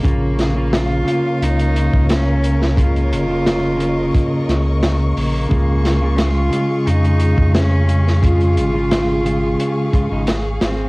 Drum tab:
HH |x-x-x-x-xxx-x-x-|xxx-x-x-x-x-x-o-|x-x-x-x-xxx-x-x-|xxx-x-x-x-x-x-x-|
SD |--o-o-------o--o|----o-----o-o---|--o-o-------o--o|----o-------o-o-|
BD |o----------o----|o-------o-------|o----------o----|o---------o-----|